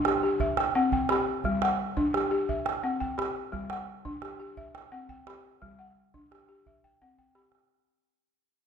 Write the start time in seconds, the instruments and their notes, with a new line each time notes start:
Already playing: balafon D4
0.05 balafon G4, calabash click
0.23 balafon G4
0.40 balafon E5, calabash thump
0.57 balafon G5, calabash click
0.75 balafon C4 F#5, calabash click
0.92 balafon G5, calabash thump, calabash click
1.09 balafon G4 B5, calabash click
1.27 calabash click
1.44 balafon G3, calabash thump
1.62 balafon F#5, calabash click
1.97 balafon D4, calabash thump
2.14 balafon G4, calabash click
2.31 balafon G4
2.49 balafon E5, calabash thump
2.66 balafon G5, calabash click
2.83 balafon C4 F#5, calabash click
3.00 balafon G5, calabash thump, calabash click
3.18 balafon G4 B5, calabash click
3.36 calabash click
3.52 balafon G3, calabash thump
3.70 balafon F#5, calabash click
4.05 balafon D4, calabash thump
4.22 balafon G4, calabash click
4.40 balafon G4
4.57 balafon E5, calabash thump
4.75 balafon G5, calabash click
4.92 balafon C4 F#5, calabash click
5.09 balafon G5, calabash thump, calabash click
5.27 balafon G4 B5, calabash click
5.45 calabash click
5.62 balafon G3, calabash thump
5.71 calabash click
5.79 balafon F#5
5.88 calabash click
6.14 balafon D4, calabash thump
6.31 balafon G4, calabash click
6.49 balafon G4
6.66 balafon E5, calabash thump, calabash click
6.84 balafon G5, calabash thump
7.01 balafon C4 F#5, calabash thump
7.18 balafon G5, calabash thump
7.35 balafon G4 B5, calabash click
7.52 calabash click